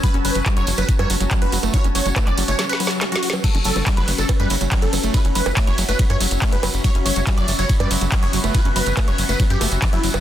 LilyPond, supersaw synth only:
\new Staff \with { instrumentName = "Supersaw synth" } { \time 4/4 \key fis \phrygian \tempo 4 = 141 b'16 r16 b'16 r8 cis''16 r16 b'16 r16 cis''16 r8. b'16 r8 | cis''16 r16 cis''16 r8 d''16 r16 cis''16 r16 b'16 r8. fis'16 r8 | a'16 r16 a'16 r8 b'16 r16 a'16 r16 b'16 r8. a'16 r8 | b'16 r16 b'16 r8 cis''16 r16 b'16 r16 cis''16 r8. b'16 r8 |
cis''16 r16 cis''16 r8 d''16 r16 cis''16 r16 d''16 r8. cis''16 r8 | b'16 r16 b'16 r8 cis''16 r16 b'16 r16 g'16 r8. e'16 r8 | }